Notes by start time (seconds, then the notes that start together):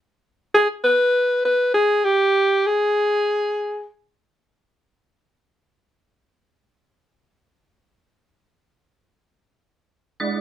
0.54 G#4
0.84 B4
1.45 B4
1.74 G#4
2.05 G4
2.67 G#4
10.20 G#3 D4 E4 D5 F#5